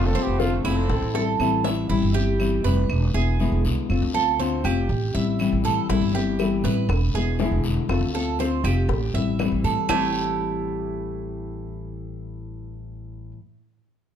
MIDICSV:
0, 0, Header, 1, 8, 480
1, 0, Start_track
1, 0, Key_signature, 0, "minor"
1, 0, Tempo, 500000
1, 1822, Time_signature, 4, 2, 24, 8
1, 13589, End_track
2, 0, Start_track
2, 0, Title_t, "Cuban tres"
2, 0, Program_c, 0, 25
2, 143, Note_on_c, 0, 72, 76
2, 608, Note_off_c, 0, 72, 0
2, 622, Note_on_c, 0, 64, 84
2, 1088, Note_off_c, 0, 64, 0
2, 1102, Note_on_c, 0, 69, 71
2, 1568, Note_off_c, 0, 69, 0
2, 1578, Note_on_c, 0, 76, 75
2, 1813, Note_off_c, 0, 76, 0
2, 1819, Note_on_c, 0, 64, 74
2, 2053, Note_off_c, 0, 64, 0
2, 2058, Note_on_c, 0, 67, 78
2, 2525, Note_off_c, 0, 67, 0
2, 2538, Note_on_c, 0, 71, 75
2, 3005, Note_off_c, 0, 71, 0
2, 3018, Note_on_c, 0, 68, 78
2, 3485, Note_off_c, 0, 68, 0
2, 3978, Note_on_c, 0, 69, 75
2, 4213, Note_off_c, 0, 69, 0
2, 4219, Note_on_c, 0, 72, 69
2, 4453, Note_off_c, 0, 72, 0
2, 4462, Note_on_c, 0, 67, 79
2, 4927, Note_off_c, 0, 67, 0
2, 4940, Note_on_c, 0, 76, 77
2, 5406, Note_off_c, 0, 76, 0
2, 5422, Note_on_c, 0, 69, 78
2, 5654, Note_off_c, 0, 69, 0
2, 5660, Note_on_c, 0, 64, 84
2, 5893, Note_off_c, 0, 64, 0
2, 5901, Note_on_c, 0, 67, 74
2, 6366, Note_off_c, 0, 67, 0
2, 6381, Note_on_c, 0, 71, 83
2, 6846, Note_off_c, 0, 71, 0
2, 6863, Note_on_c, 0, 68, 75
2, 7327, Note_off_c, 0, 68, 0
2, 7821, Note_on_c, 0, 69, 76
2, 8053, Note_off_c, 0, 69, 0
2, 8063, Note_on_c, 0, 72, 75
2, 8294, Note_off_c, 0, 72, 0
2, 8299, Note_on_c, 0, 67, 73
2, 8765, Note_off_c, 0, 67, 0
2, 8780, Note_on_c, 0, 76, 75
2, 9245, Note_off_c, 0, 76, 0
2, 9259, Note_on_c, 0, 69, 70
2, 9492, Note_off_c, 0, 69, 0
2, 9492, Note_on_c, 0, 57, 96
2, 9498, Note_on_c, 0, 64, 90
2, 9506, Note_on_c, 0, 67, 81
2, 12778, Note_off_c, 0, 57, 0
2, 12784, Note_off_c, 0, 64, 0
2, 12788, Note_off_c, 0, 67, 0
2, 13589, End_track
3, 0, Start_track
3, 0, Title_t, "Trumpet"
3, 0, Program_c, 1, 56
3, 58, Note_on_c, 1, 69, 82
3, 216, Note_on_c, 1, 67, 83
3, 231, Note_off_c, 1, 69, 0
3, 378, Note_on_c, 1, 65, 91
3, 392, Note_off_c, 1, 67, 0
3, 540, Note_off_c, 1, 65, 0
3, 620, Note_on_c, 1, 69, 80
3, 1303, Note_off_c, 1, 69, 0
3, 13589, End_track
4, 0, Start_track
4, 0, Title_t, "Nylon-string guitar"
4, 0, Program_c, 2, 24
4, 0, Note_on_c, 2, 50, 75
4, 0, Note_on_c, 2, 57, 73
4, 0, Note_on_c, 2, 60, 79
4, 0, Note_on_c, 2, 65, 91
4, 129, Note_off_c, 2, 65, 0
4, 130, Note_off_c, 2, 50, 0
4, 133, Note_off_c, 2, 57, 0
4, 137, Note_off_c, 2, 60, 0
4, 140, Note_on_c, 2, 65, 58
4, 151, Note_on_c, 2, 60, 58
4, 161, Note_on_c, 2, 57, 48
4, 372, Note_off_c, 2, 65, 0
4, 376, Note_off_c, 2, 57, 0
4, 377, Note_off_c, 2, 60, 0
4, 378, Note_on_c, 2, 50, 66
4, 387, Note_on_c, 2, 57, 68
4, 391, Note_on_c, 2, 60, 81
4, 400, Note_on_c, 2, 65, 84
4, 608, Note_off_c, 2, 65, 0
4, 611, Note_off_c, 2, 50, 0
4, 615, Note_off_c, 2, 57, 0
4, 617, Note_off_c, 2, 60, 0
4, 620, Note_on_c, 2, 65, 51
4, 632, Note_on_c, 2, 60, 46
4, 641, Note_on_c, 2, 57, 42
4, 852, Note_off_c, 2, 65, 0
4, 857, Note_off_c, 2, 60, 0
4, 862, Note_off_c, 2, 57, 0
4, 1095, Note_on_c, 2, 64, 50
4, 1107, Note_on_c, 2, 60, 44
4, 1115, Note_on_c, 2, 55, 38
4, 1329, Note_off_c, 2, 64, 0
4, 1332, Note_off_c, 2, 55, 0
4, 1335, Note_off_c, 2, 60, 0
4, 1335, Note_on_c, 2, 52, 69
4, 1343, Note_on_c, 2, 55, 81
4, 1351, Note_on_c, 2, 60, 84
4, 1356, Note_on_c, 2, 64, 74
4, 1802, Note_off_c, 2, 52, 0
4, 1810, Note_off_c, 2, 55, 0
4, 1814, Note_on_c, 2, 52, 68
4, 1817, Note_off_c, 2, 60, 0
4, 1819, Note_off_c, 2, 64, 0
4, 1821, Note_on_c, 2, 55, 76
4, 1828, Note_on_c, 2, 60, 78
4, 1834, Note_on_c, 2, 64, 76
4, 2039, Note_off_c, 2, 64, 0
4, 2048, Note_off_c, 2, 52, 0
4, 2051, Note_on_c, 2, 64, 56
4, 2052, Note_off_c, 2, 55, 0
4, 2052, Note_off_c, 2, 60, 0
4, 2063, Note_on_c, 2, 60, 48
4, 2073, Note_on_c, 2, 55, 43
4, 2287, Note_off_c, 2, 64, 0
4, 2288, Note_off_c, 2, 55, 0
4, 2290, Note_on_c, 2, 52, 66
4, 2293, Note_off_c, 2, 60, 0
4, 2299, Note_on_c, 2, 55, 73
4, 2305, Note_on_c, 2, 60, 73
4, 2311, Note_on_c, 2, 64, 72
4, 2522, Note_off_c, 2, 64, 0
4, 2527, Note_off_c, 2, 52, 0
4, 2531, Note_off_c, 2, 55, 0
4, 2533, Note_on_c, 2, 64, 56
4, 2534, Note_off_c, 2, 60, 0
4, 2545, Note_on_c, 2, 60, 46
4, 2556, Note_on_c, 2, 55, 42
4, 2768, Note_off_c, 2, 64, 0
4, 2774, Note_off_c, 2, 60, 0
4, 2779, Note_off_c, 2, 55, 0
4, 3016, Note_on_c, 2, 64, 50
4, 3029, Note_on_c, 2, 59, 46
4, 3035, Note_on_c, 2, 56, 39
4, 3249, Note_off_c, 2, 64, 0
4, 3252, Note_on_c, 2, 47, 66
4, 3254, Note_off_c, 2, 56, 0
4, 3256, Note_off_c, 2, 59, 0
4, 3261, Note_on_c, 2, 50, 73
4, 3265, Note_on_c, 2, 56, 86
4, 3270, Note_on_c, 2, 59, 80
4, 3274, Note_on_c, 2, 64, 72
4, 3725, Note_off_c, 2, 50, 0
4, 3727, Note_off_c, 2, 47, 0
4, 3734, Note_off_c, 2, 56, 0
4, 3736, Note_off_c, 2, 59, 0
4, 3737, Note_on_c, 2, 50, 65
4, 3738, Note_off_c, 2, 64, 0
4, 3744, Note_on_c, 2, 57, 79
4, 3748, Note_on_c, 2, 60, 83
4, 3754, Note_on_c, 2, 65, 77
4, 3964, Note_off_c, 2, 65, 0
4, 3969, Note_off_c, 2, 50, 0
4, 3973, Note_off_c, 2, 57, 0
4, 3975, Note_off_c, 2, 60, 0
4, 3976, Note_on_c, 2, 65, 60
4, 3986, Note_on_c, 2, 60, 47
4, 3997, Note_on_c, 2, 57, 46
4, 4208, Note_off_c, 2, 57, 0
4, 4209, Note_off_c, 2, 65, 0
4, 4212, Note_on_c, 2, 50, 73
4, 4214, Note_off_c, 2, 60, 0
4, 4219, Note_on_c, 2, 57, 73
4, 4226, Note_on_c, 2, 60, 74
4, 4233, Note_on_c, 2, 65, 70
4, 4446, Note_off_c, 2, 65, 0
4, 4447, Note_off_c, 2, 50, 0
4, 4451, Note_off_c, 2, 57, 0
4, 4454, Note_off_c, 2, 60, 0
4, 4457, Note_on_c, 2, 65, 55
4, 4466, Note_on_c, 2, 60, 47
4, 4474, Note_on_c, 2, 57, 43
4, 4690, Note_off_c, 2, 65, 0
4, 4694, Note_off_c, 2, 60, 0
4, 4698, Note_off_c, 2, 57, 0
4, 4936, Note_on_c, 2, 64, 49
4, 4946, Note_on_c, 2, 60, 47
4, 4955, Note_on_c, 2, 55, 41
4, 5169, Note_off_c, 2, 64, 0
4, 5174, Note_off_c, 2, 55, 0
4, 5174, Note_off_c, 2, 60, 0
4, 5177, Note_on_c, 2, 52, 69
4, 5186, Note_on_c, 2, 55, 78
4, 5190, Note_on_c, 2, 60, 77
4, 5196, Note_on_c, 2, 64, 85
4, 5644, Note_off_c, 2, 52, 0
4, 5654, Note_off_c, 2, 55, 0
4, 5656, Note_off_c, 2, 60, 0
4, 5656, Note_on_c, 2, 52, 73
4, 5659, Note_off_c, 2, 64, 0
4, 5664, Note_on_c, 2, 55, 83
4, 5669, Note_on_c, 2, 60, 80
4, 5676, Note_on_c, 2, 64, 78
4, 5884, Note_off_c, 2, 64, 0
4, 5888, Note_off_c, 2, 52, 0
4, 5892, Note_off_c, 2, 55, 0
4, 5895, Note_off_c, 2, 60, 0
4, 5895, Note_on_c, 2, 64, 61
4, 5905, Note_on_c, 2, 60, 49
4, 5916, Note_on_c, 2, 55, 44
4, 6128, Note_off_c, 2, 64, 0
4, 6133, Note_off_c, 2, 60, 0
4, 6134, Note_off_c, 2, 55, 0
4, 6137, Note_on_c, 2, 52, 71
4, 6145, Note_on_c, 2, 55, 84
4, 6151, Note_on_c, 2, 60, 79
4, 6156, Note_on_c, 2, 64, 80
4, 6365, Note_off_c, 2, 64, 0
4, 6369, Note_off_c, 2, 52, 0
4, 6373, Note_off_c, 2, 55, 0
4, 6374, Note_off_c, 2, 60, 0
4, 6376, Note_on_c, 2, 64, 48
4, 6385, Note_on_c, 2, 60, 45
4, 6396, Note_on_c, 2, 55, 47
4, 6609, Note_off_c, 2, 64, 0
4, 6613, Note_off_c, 2, 60, 0
4, 6615, Note_off_c, 2, 55, 0
4, 6855, Note_on_c, 2, 64, 50
4, 6868, Note_on_c, 2, 59, 47
4, 6876, Note_on_c, 2, 56, 42
4, 7088, Note_off_c, 2, 64, 0
4, 7093, Note_off_c, 2, 56, 0
4, 7094, Note_off_c, 2, 59, 0
4, 7094, Note_on_c, 2, 47, 67
4, 7101, Note_on_c, 2, 50, 82
4, 7105, Note_on_c, 2, 56, 84
4, 7111, Note_on_c, 2, 59, 75
4, 7114, Note_on_c, 2, 64, 88
4, 7560, Note_off_c, 2, 50, 0
4, 7567, Note_off_c, 2, 47, 0
4, 7571, Note_on_c, 2, 50, 73
4, 7573, Note_off_c, 2, 56, 0
4, 7576, Note_off_c, 2, 59, 0
4, 7577, Note_off_c, 2, 64, 0
4, 7578, Note_on_c, 2, 57, 78
4, 7585, Note_on_c, 2, 60, 78
4, 7590, Note_on_c, 2, 65, 76
4, 7799, Note_off_c, 2, 65, 0
4, 7806, Note_off_c, 2, 50, 0
4, 7809, Note_off_c, 2, 57, 0
4, 7811, Note_on_c, 2, 65, 53
4, 7813, Note_off_c, 2, 60, 0
4, 7823, Note_on_c, 2, 60, 52
4, 7831, Note_on_c, 2, 57, 47
4, 8046, Note_off_c, 2, 65, 0
4, 8049, Note_off_c, 2, 57, 0
4, 8052, Note_off_c, 2, 60, 0
4, 8054, Note_on_c, 2, 50, 73
4, 8060, Note_on_c, 2, 57, 67
4, 8069, Note_on_c, 2, 60, 88
4, 8075, Note_on_c, 2, 65, 83
4, 8281, Note_off_c, 2, 65, 0
4, 8287, Note_off_c, 2, 50, 0
4, 8290, Note_off_c, 2, 57, 0
4, 8291, Note_off_c, 2, 60, 0
4, 8293, Note_on_c, 2, 65, 58
4, 8303, Note_on_c, 2, 60, 43
4, 8310, Note_on_c, 2, 57, 42
4, 8527, Note_off_c, 2, 65, 0
4, 8528, Note_off_c, 2, 60, 0
4, 8532, Note_off_c, 2, 57, 0
4, 8774, Note_on_c, 2, 64, 48
4, 8784, Note_on_c, 2, 60, 46
4, 8794, Note_on_c, 2, 55, 46
4, 9007, Note_off_c, 2, 64, 0
4, 9009, Note_off_c, 2, 55, 0
4, 9012, Note_off_c, 2, 60, 0
4, 9015, Note_on_c, 2, 52, 69
4, 9020, Note_on_c, 2, 55, 70
4, 9027, Note_on_c, 2, 60, 72
4, 9034, Note_on_c, 2, 64, 71
4, 9485, Note_off_c, 2, 52, 0
4, 9487, Note_on_c, 2, 45, 73
4, 9490, Note_off_c, 2, 55, 0
4, 9494, Note_off_c, 2, 60, 0
4, 9497, Note_off_c, 2, 64, 0
4, 9497, Note_on_c, 2, 52, 69
4, 9506, Note_on_c, 2, 55, 68
4, 9512, Note_on_c, 2, 60, 85
4, 9519, Note_on_c, 2, 64, 69
4, 12847, Note_off_c, 2, 45, 0
4, 12857, Note_off_c, 2, 52, 0
4, 12866, Note_off_c, 2, 55, 0
4, 12872, Note_off_c, 2, 60, 0
4, 12879, Note_off_c, 2, 64, 0
4, 13589, End_track
5, 0, Start_track
5, 0, Title_t, "Violin section"
5, 0, Program_c, 3, 48
5, 62, Note_on_c, 3, 60, 76
5, 222, Note_off_c, 3, 60, 0
5, 222, Note_on_c, 3, 59, 68
5, 378, Note_on_c, 3, 57, 73
5, 382, Note_off_c, 3, 59, 0
5, 540, Note_off_c, 3, 57, 0
5, 619, Note_on_c, 3, 60, 74
5, 1302, Note_off_c, 3, 60, 0
5, 13589, End_track
6, 0, Start_track
6, 0, Title_t, "Upright bass"
6, 0, Program_c, 4, 32
6, 0, Note_on_c, 4, 29, 104
6, 128, Note_off_c, 4, 29, 0
6, 258, Note_on_c, 4, 29, 84
6, 602, Note_off_c, 4, 29, 0
6, 617, Note_on_c, 4, 29, 92
6, 848, Note_off_c, 4, 29, 0
6, 859, Note_on_c, 4, 33, 107
6, 971, Note_off_c, 4, 33, 0
6, 977, Note_on_c, 4, 33, 86
6, 1322, Note_off_c, 4, 33, 0
6, 1339, Note_on_c, 4, 33, 93
6, 1797, Note_off_c, 4, 33, 0
6, 1820, Note_on_c, 4, 33, 97
6, 1935, Note_off_c, 4, 33, 0
6, 1939, Note_on_c, 4, 31, 92
6, 2510, Note_off_c, 4, 31, 0
6, 2538, Note_on_c, 4, 29, 100
6, 2768, Note_off_c, 4, 29, 0
6, 2777, Note_on_c, 4, 28, 100
6, 3007, Note_off_c, 4, 28, 0
6, 3017, Note_on_c, 4, 28, 96
6, 3361, Note_off_c, 4, 28, 0
6, 3379, Note_on_c, 4, 28, 91
6, 3492, Note_off_c, 4, 28, 0
6, 3498, Note_on_c, 4, 36, 86
6, 3614, Note_off_c, 4, 36, 0
6, 3740, Note_on_c, 4, 29, 84
6, 3852, Note_off_c, 4, 29, 0
6, 3857, Note_on_c, 4, 38, 96
6, 4429, Note_off_c, 4, 38, 0
6, 4457, Note_on_c, 4, 29, 95
6, 4687, Note_off_c, 4, 29, 0
6, 4697, Note_on_c, 4, 33, 103
6, 4927, Note_off_c, 4, 33, 0
6, 4941, Note_on_c, 4, 33, 96
6, 5283, Note_off_c, 4, 33, 0
6, 5300, Note_on_c, 4, 33, 87
6, 5414, Note_off_c, 4, 33, 0
6, 5420, Note_on_c, 4, 45, 86
6, 5534, Note_off_c, 4, 45, 0
6, 5657, Note_on_c, 4, 33, 99
6, 5768, Note_off_c, 4, 33, 0
6, 5774, Note_on_c, 4, 31, 95
6, 6347, Note_off_c, 4, 31, 0
6, 6374, Note_on_c, 4, 33, 103
6, 6605, Note_off_c, 4, 33, 0
6, 6612, Note_on_c, 4, 28, 113
6, 6844, Note_off_c, 4, 28, 0
6, 6853, Note_on_c, 4, 28, 92
6, 7198, Note_off_c, 4, 28, 0
6, 7214, Note_on_c, 4, 28, 88
6, 7324, Note_off_c, 4, 28, 0
6, 7330, Note_on_c, 4, 28, 92
6, 7449, Note_off_c, 4, 28, 0
6, 7573, Note_on_c, 4, 29, 95
6, 7684, Note_off_c, 4, 29, 0
6, 7689, Note_on_c, 4, 38, 98
6, 8264, Note_off_c, 4, 38, 0
6, 8292, Note_on_c, 4, 29, 105
6, 8524, Note_off_c, 4, 29, 0
6, 8531, Note_on_c, 4, 33, 110
6, 8763, Note_off_c, 4, 33, 0
6, 8774, Note_on_c, 4, 33, 96
6, 9119, Note_off_c, 4, 33, 0
6, 9137, Note_on_c, 4, 33, 85
6, 9248, Note_off_c, 4, 33, 0
6, 9253, Note_on_c, 4, 45, 96
6, 9370, Note_off_c, 4, 45, 0
6, 9497, Note_on_c, 4, 33, 84
6, 12783, Note_off_c, 4, 33, 0
6, 13589, End_track
7, 0, Start_track
7, 0, Title_t, "Muted nylon-string guitar strokes"
7, 864, Note_on_c, 9, 29, 66
7, 960, Note_off_c, 9, 29, 0
7, 2779, Note_on_c, 9, 29, 55
7, 2875, Note_off_c, 9, 29, 0
7, 4698, Note_on_c, 9, 29, 60
7, 4794, Note_off_c, 9, 29, 0
7, 6613, Note_on_c, 9, 29, 67
7, 6709, Note_off_c, 9, 29, 0
7, 8534, Note_on_c, 9, 29, 57
7, 8630, Note_off_c, 9, 29, 0
7, 13589, End_track
8, 0, Start_track
8, 0, Title_t, "Drums"
8, 140, Note_on_c, 9, 60, 37
8, 236, Note_off_c, 9, 60, 0
8, 382, Note_on_c, 9, 60, 56
8, 383, Note_on_c, 9, 73, 66
8, 478, Note_off_c, 9, 60, 0
8, 479, Note_off_c, 9, 73, 0
8, 622, Note_on_c, 9, 73, 69
8, 623, Note_on_c, 9, 60, 35
8, 623, Note_on_c, 9, 75, 67
8, 718, Note_off_c, 9, 73, 0
8, 719, Note_off_c, 9, 60, 0
8, 719, Note_off_c, 9, 75, 0
8, 860, Note_on_c, 9, 60, 72
8, 865, Note_on_c, 9, 74, 66
8, 956, Note_off_c, 9, 60, 0
8, 961, Note_off_c, 9, 74, 0
8, 1100, Note_on_c, 9, 60, 80
8, 1196, Note_off_c, 9, 60, 0
8, 1342, Note_on_c, 9, 75, 64
8, 1343, Note_on_c, 9, 73, 68
8, 1438, Note_off_c, 9, 75, 0
8, 1439, Note_off_c, 9, 73, 0
8, 1578, Note_on_c, 9, 61, 97
8, 1585, Note_on_c, 9, 73, 71
8, 1674, Note_off_c, 9, 61, 0
8, 1681, Note_off_c, 9, 73, 0
8, 1824, Note_on_c, 9, 74, 65
8, 1920, Note_off_c, 9, 74, 0
8, 2301, Note_on_c, 9, 75, 57
8, 2303, Note_on_c, 9, 73, 71
8, 2397, Note_off_c, 9, 75, 0
8, 2399, Note_off_c, 9, 73, 0
8, 2541, Note_on_c, 9, 73, 65
8, 2637, Note_off_c, 9, 73, 0
8, 2780, Note_on_c, 9, 75, 73
8, 2782, Note_on_c, 9, 74, 67
8, 2876, Note_off_c, 9, 75, 0
8, 2878, Note_off_c, 9, 74, 0
8, 3261, Note_on_c, 9, 73, 61
8, 3357, Note_off_c, 9, 73, 0
8, 3502, Note_on_c, 9, 73, 77
8, 3598, Note_off_c, 9, 73, 0
8, 3742, Note_on_c, 9, 75, 64
8, 3743, Note_on_c, 9, 74, 73
8, 3838, Note_off_c, 9, 75, 0
8, 3839, Note_off_c, 9, 74, 0
8, 4218, Note_on_c, 9, 73, 66
8, 4314, Note_off_c, 9, 73, 0
8, 4455, Note_on_c, 9, 73, 67
8, 4461, Note_on_c, 9, 75, 72
8, 4551, Note_off_c, 9, 73, 0
8, 4557, Note_off_c, 9, 75, 0
8, 4697, Note_on_c, 9, 74, 66
8, 4793, Note_off_c, 9, 74, 0
8, 5175, Note_on_c, 9, 73, 68
8, 5181, Note_on_c, 9, 75, 62
8, 5271, Note_off_c, 9, 73, 0
8, 5277, Note_off_c, 9, 75, 0
8, 5413, Note_on_c, 9, 73, 73
8, 5509, Note_off_c, 9, 73, 0
8, 5657, Note_on_c, 9, 74, 64
8, 5660, Note_on_c, 9, 60, 68
8, 5753, Note_off_c, 9, 74, 0
8, 5756, Note_off_c, 9, 60, 0
8, 5900, Note_on_c, 9, 60, 33
8, 5996, Note_off_c, 9, 60, 0
8, 6133, Note_on_c, 9, 73, 69
8, 6139, Note_on_c, 9, 60, 58
8, 6141, Note_on_c, 9, 75, 58
8, 6229, Note_off_c, 9, 73, 0
8, 6235, Note_off_c, 9, 60, 0
8, 6237, Note_off_c, 9, 75, 0
8, 6372, Note_on_c, 9, 73, 68
8, 6377, Note_on_c, 9, 60, 34
8, 6468, Note_off_c, 9, 73, 0
8, 6473, Note_off_c, 9, 60, 0
8, 6613, Note_on_c, 9, 74, 63
8, 6620, Note_on_c, 9, 60, 73
8, 6620, Note_on_c, 9, 75, 70
8, 6709, Note_off_c, 9, 74, 0
8, 6716, Note_off_c, 9, 60, 0
8, 6716, Note_off_c, 9, 75, 0
8, 6858, Note_on_c, 9, 60, 33
8, 6954, Note_off_c, 9, 60, 0
8, 7094, Note_on_c, 9, 73, 60
8, 7100, Note_on_c, 9, 60, 37
8, 7100, Note_on_c, 9, 61, 88
8, 7190, Note_off_c, 9, 73, 0
8, 7196, Note_off_c, 9, 60, 0
8, 7196, Note_off_c, 9, 61, 0
8, 7332, Note_on_c, 9, 73, 77
8, 7428, Note_off_c, 9, 73, 0
8, 7574, Note_on_c, 9, 74, 68
8, 7578, Note_on_c, 9, 60, 70
8, 7579, Note_on_c, 9, 75, 64
8, 7670, Note_off_c, 9, 74, 0
8, 7674, Note_off_c, 9, 60, 0
8, 7675, Note_off_c, 9, 75, 0
8, 7819, Note_on_c, 9, 60, 39
8, 7915, Note_off_c, 9, 60, 0
8, 8054, Note_on_c, 9, 73, 71
8, 8061, Note_on_c, 9, 60, 55
8, 8150, Note_off_c, 9, 73, 0
8, 8157, Note_off_c, 9, 60, 0
8, 8296, Note_on_c, 9, 73, 68
8, 8300, Note_on_c, 9, 75, 65
8, 8302, Note_on_c, 9, 60, 32
8, 8392, Note_off_c, 9, 73, 0
8, 8396, Note_off_c, 9, 75, 0
8, 8398, Note_off_c, 9, 60, 0
8, 8535, Note_on_c, 9, 74, 61
8, 8537, Note_on_c, 9, 60, 78
8, 8631, Note_off_c, 9, 74, 0
8, 8633, Note_off_c, 9, 60, 0
8, 8777, Note_on_c, 9, 60, 35
8, 8873, Note_off_c, 9, 60, 0
8, 9015, Note_on_c, 9, 73, 63
8, 9019, Note_on_c, 9, 75, 69
8, 9020, Note_on_c, 9, 60, 37
8, 9020, Note_on_c, 9, 61, 90
8, 9111, Note_off_c, 9, 73, 0
8, 9115, Note_off_c, 9, 75, 0
8, 9116, Note_off_c, 9, 60, 0
8, 9116, Note_off_c, 9, 61, 0
8, 9257, Note_on_c, 9, 73, 72
8, 9353, Note_off_c, 9, 73, 0
8, 9495, Note_on_c, 9, 74, 85
8, 9495, Note_on_c, 9, 75, 97
8, 9499, Note_on_c, 9, 61, 97
8, 9591, Note_off_c, 9, 74, 0
8, 9591, Note_off_c, 9, 75, 0
8, 9595, Note_off_c, 9, 61, 0
8, 13589, End_track
0, 0, End_of_file